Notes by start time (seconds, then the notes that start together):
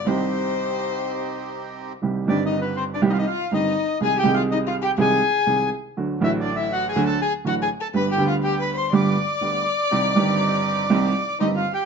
0.05 C2 C3 D#3 G3 C4 D#4 G4 C5
2.02 C2 C3 D#3 G3 C4 G4
2.25 G1 G2 D#3 G3 C4 G4 D5
2.30 D4
2.45 D#4 D#5
2.61 B3 B4
2.76 C4 C5
2.94 D4 D5
3.02 C2 C3 D#3 G3 C4 G4
3.10 D#4 D#5 F5
3.15 F4
3.19 D#4 D#5
3.27 F4 F5
3.52 G1 G2 D#3 G3 C4 D#4 G4 D#5
4.01 C2 C3 D#3 G#3 C4 G#4 G#5
4.18 G4 G5
4.24 C2 C3 D#3 G#3 C4
4.28 G#4
4.34 F4 F5
4.51 D#4 D#5
4.67 F4 F5
4.82 G4 G5
4.98 C2 C3 D#3 G#3 C4 G#4 G#5
5.47 C2 C3 D#3 G#3 C4 G#4
5.97 D2 D3 F#3 A3 F#4
6.20 A1 A2 D3 F#3 A3
6.24 E4 F#4 E5
6.41 D4 D5
6.56 E4 E5
6.73 F#4 F#5
6.89 G#4 G#5
6.96 D2 D3 F#3 A3 F#4
7.06 A4 A5
7.22 G#4 G#5
7.45 A1 A2 D3 F#3 A3 F#4 F#5
7.62 G#4 G#5
7.80 A4 A5
7.94 G1 G2 D3 G3 B3 G4 B4 B5
8.11 G4 G5
8.15 D2 D3 G3 B3
8.20 G4
8.27 F4 F5
8.43 G4 G5
8.60 B4 B5
8.75 C5 C6
8.92 G1 G2 D3 G3 B3 G4 D5 D6
9.41 D2 D3 G3 B3 G4
9.91 C2 C3 D#3 G3 C4 D#4 G4
10.15 G1 G2 D#3 G3 C4 D#4 G4
10.90 C2 C3 D#3 G3 C4 D#4 G4
11.40 G1 G2 D#3 G3 C4 D#4 G4 D#5
11.56 F4 F5
11.74 G4 G5